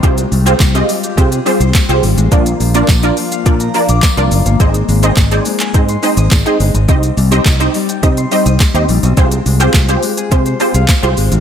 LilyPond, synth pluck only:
\new Staff \with { instrumentName = "Synth pluck" } { \time 4/4 \key f \dorian \tempo 4 = 105 <c' f' g' aes' c''>16 r8 <c' f' g' aes' c''>16 r16 <c' f' g' aes' ees''>16 r8 <c' f' g' aes' c''>16 r16 <c' f' g' aes' c''>16 r8 <c' f' g' aes' c''>16 r8 | <bes d' f' bes' d''>16 r8 <bes d' f' bes' d''>16 r16 <bes d' f' bes' d''>16 r8 <bes d' f' bes' d''>16 r16 <bes d' f' bes' d''>16 r8 <bes d' f' bes' d''>16 r8 | <c' ees' aes' c'' ees''>16 r8 <c' ees' aes' c'' ees''>16 r16 <c' ees' aes' c'' d''>16 r8 <c' ees' aes' c'' ees''>16 r16 <c' ees' aes' c'' ees''>16 r8 <c' ees' aes' c'' ees''>16 r8 | <c' ees' g' c'' ees''>16 r8 <c' ees' g' c'' ees''>16 r16 <c' ees' g' c'' ees''>16 r8 <c' ees' g' c'' ees''>16 r16 <c' ees' g' c'' ees''>16 r8 <c' ees' g' c'' ees''>16 r8 |
<c' f' g' aes' c''>16 r8 <c' f' g' aes' c''>16 r16 <c' f' g' aes' c''>16 r8 <c' f' g' aes' c''>16 r16 <c' f' g' aes' c''>16 r8 <c' f' g' aes' c''>16 r8 | }